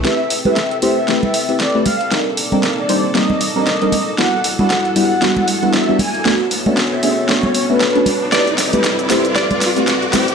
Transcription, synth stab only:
X:1
M:4/4
L:1/16
Q:"Swing 16ths" 1/4=116
K:Ador
V:1 name="Synth stab"
[A,CEGB] z2 [A,CEGB] z2 [A,CEGc] z [A,CEGB]3 [A,CEGB]2 [A,CEGB] z2 | [G,CD_E_B] z2 [G,CDEB] z2 [G,CDEc] z [G,_B,CEB]3 [G,CDEB]2 [G,CDEB] z2 | [G,B,DEF] z2 [G,B,DEF] z2 [G,B,DEG] z [G,B,DEF]3 [G,B,DEF]2 [G,B,DEF] z2 | [A,B,^CDF] z2 [A,B,CDF] z2 [A,B,CD^G] z [A,B,CDF]3 [A,B,CDF]2 [A,B,CDF] z2 |
[A,CEGB] z2 [A,CEGB] z2 [A,CEGc] z [A,CEGB] z2 [A,CEGB] z2 [A,CEGc] z |]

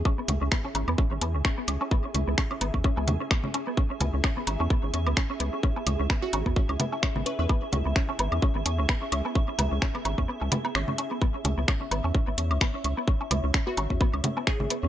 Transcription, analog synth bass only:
X:1
M:4/4
L:1/16
Q:"Swing 16ths" 1/4=129
K:C#m
V:1 name="Analog synth bass" clef=bass
z2 C,, C,, z2 G,,, E,, z G,,, E,, C,, z2 C,, z | z2 C,, C,, z2 G,,, E,, z C,, E,, z4 z | z2 C,, C,, z2 G,,, E,, z G,,, E,, C,, z2 C,, z | z2 C,, C,, z2 G,,, E,, z C,, z3 G,,, z E,, |
z2 C,, C,, z2 G,,, E,, z G,,, E,, C,, z2 C,, z | z2 C,, C,, z2 G,,, E,, z C,, z2 G,,, z3 | z2 C,, C,, z2 G,,, E,, z G,,, E,, C,, z2 C,, z | z2 C,, C,, z2 G,,, E,, z C,, z3 G,,, z E,, |]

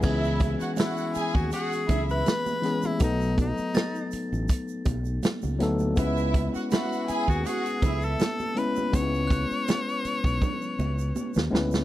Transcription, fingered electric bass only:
X:1
M:4/4
L:1/16
Q:"Swing 16ths" 1/4=81
K:C#m
V:1 name="Fingered electric bass" clef=bass
C,,3 z4 D,, z2 C,,2 z4 | B,,,3 z4 A,,, z2 B,,,2 z C,, =D,,2 | C,,3 z4 D,, z2 C,,2 z4 | C,,3 z4 B,,, z2 C,,2 z D,, =D,,2 |]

